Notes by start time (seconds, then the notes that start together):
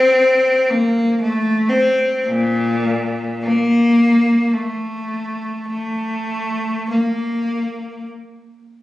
Already playing: C4
0.70 A#3
1.21 A3
1.69 C4
2.27 A#2
3.43 A#3
4.54 A3
5.68 A3
6.91 A#3